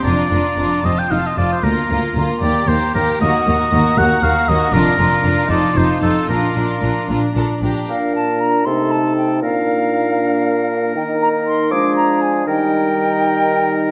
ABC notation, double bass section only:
X:1
M:6/8
L:1/8
Q:3/8=78
K:Bb
V:1 name="Double bass section" clef=bass
F,,, F,,, F,,, F,,, F,,, F,,, | D,, D,, D,, E,, E,, E,, | E,, E,, E,, E,, E,, E,, | F,,, F,,, F,,, F,,, F,,, F,,, |
B,,, B,,, B,,, B,,, B,,, B,,, | z6 | z6 | z6 |
z6 |]